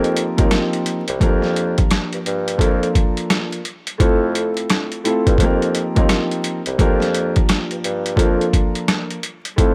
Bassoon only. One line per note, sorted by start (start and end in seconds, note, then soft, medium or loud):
0.00 0.28 F2 loud
0.39 0.50 D#2 medium
1.09 1.19 C2 medium
1.21 1.79 F2 loud
2.13 2.18 G2 soft
2.26 2.55 G2 medium
2.59 2.89 F2 loud
4.00 4.58 F2 loud
5.27 5.38 G2 medium
5.38 5.86 F2 loud
5.97 6.08 D#2 medium
6.67 6.77 C2 medium
6.79 7.37 F2 loud
7.71 7.76 G2 soft
7.84 8.13 G2 medium
8.17 8.47 F2 loud
9.58 9.74 F2 loud